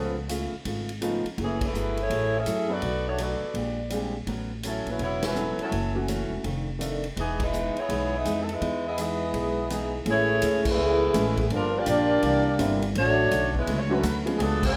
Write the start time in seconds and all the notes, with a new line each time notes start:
Already playing: C#2 C#3 F3 A3 B3 C#4 F4 A4
0.28 C#3 A3 B3 F4, hi-hat pedal, ride
0.53 muted upright bass stroke
0.65 G#1 C#3 A3 B3 F4, kick, ride
0.89 ride
1.01 C#3 F3 A3 B3 C#4 D#4 F4, hi-hat pedal, ride
1.24 muted upright bass stroke, ride
1.37 F#1 F#3 A3 E4 G#4, kick, ride
1.42 E3 A3 C#4 G#4
1.61 E4 G#4 B4, kick, ride
1.65 A3
1.73 G1 F#3 A3 E4 G#4, hi-hat pedal
1.97 A3 E4 G#4 C#5, ride
2.09 A1 F#3 A3 E4 G#4, kick, ride
2.36 C#4 G#4 A4 E5
2.46 F#2 F#3 A3 E4 G#4, hi-hat pedal, ride
2.68 F#3 B3 D4 F#4 A4 D5
2.82 B1 B2 F#3 A3 D4, kick, ride
3.08 A3 D4 F#4 C#5
3.18 B2 F#3 A3 B3 D4 F#4 A4 D5, hi-hat pedal, ride
3.41 muted upright bass stroke
3.54 A#1 A#2 G#3 D4 G4, kick, ride
3.90 A#2 G3 G#3 C4 D4 G4 G#4, hi-hat pedal, ride
4.26 A1 A2 F#3 B3 C#4, kick, ride
4.63 A2 F#3 B3 C#4 E4 A4, hi-hat pedal, ride
4.86 A#1 F#3 C#4 E4 B4, ride
4.99 E1 A2 F#3 B3 C#4 E4 F#4 C#5, kick, ride
5.23 F#3 C#4 E4 B4, snare, ride
5.35 A2 F#3 B3 C#4 A4, hi-hat pedal
5.58 F#3 C#4 E4 A4, muted upright bass stroke, ride
5.71 F#1 F#2 E3 A3 C#4, kick, ride
5.95 E3 A3 C#4 F#4
6.07 F#2 E3 A3 C#4, hi-hat pedal, ride
6.30 E1
6.44 F1 F2 D#3 A3 D4, kick, ride
6.79 F2 D#3 A3 D4 A4, hi-hat pedal, ride
7.04 ride
7.16 E1 E3 G#3 B3 D#4 G#4, kick, ride
7.40 G#3 D#4 E4 B4, kick, ride
7.52 E3 G#3 B3 D#4, hi-hat pedal
7.75 B3 E4 G#4 C#5, muted upright bass stroke, ride
7.88 B1 E3 G#3 B3 D#4, kick, ride
8.16 B3 D#4 G#4 E5
8.24 F2 E3 G#3 B3 D#4, hi-hat pedal, ride
8.42 A4
8.49 G#3 D#4 B4, ride
8.53 E4
8.60 E2 E3 G#3 B3 D#4, kick, ride
8.87 B3 E4 G#4 D#5
8.97 E3 G#3 B3 D#4 E4 G#4 D#5 E5, hi-hat pedal, ride
9.33 B1 E3 G#3 B3 D#4, kick, ride
9.70 E3 G#3 B3 D#4 G#4, hi-hat pedal, ride
10.05 A1 A2 E3 G#3 C#4 E4 G#4, kick, ride
10.09 A3 E4 G#4 C#5
10.41 D2 A2 G#3 C#4 E4, kick, hi-hat pedal, ride
10.65 E3 A3 B3 G#4, kick, crash
10.69 E4 B4
10.77 C#2 A2 G#3 C#4 E4
11.13 A1 A2 E3 G#3 A3 C#4 E4 G#4, kick, hi-hat pedal, ride
11.37 kick, ride
11.50 G1 G2 D3 F3 A#3 D4, ride
11.55 G3 D4 F4 A#4
11.75 F3 A#3 D4 F4 G4 D5
11.86 A#1 G2 F3 A#3 D4, kick, hi-hat pedal, ride
12.22 C2 C3 E3 A#3 D4, kick, ride
12.59 G1 C3 D3 E3 G3 A#3 C4 D4 E4, kick, hi-hat pedal, ride
12.82 ride
12.95 A1 D3 F#3 A3 C#4 D4 F#4 C#5, kick, ride
13.31 B1 D3 F#3 A3 C#4, kick, hi-hat pedal, ride
13.54 G#3 B3 C#4 E4 B4, kick
13.67 C#2 D3 F#3 A3 C#4, kick, ride
13.79 C#5
13.89 D3 F#3 A3 C#4 F#4 B4
13.98 A4
14.03 D2 D3 F#3 A3 C#4 B4, kick, hi-hat pedal, ride
14.26 F3 G#3 B3 C#4 G#4, ride
14.37 C#2 C#3 F#3 G#3 A3 B3 F4 G#4, kick, ride
14.42 D4 A4
14.63 F3 G#3 B3 C#4 F4 G#4 C#5, kick, crash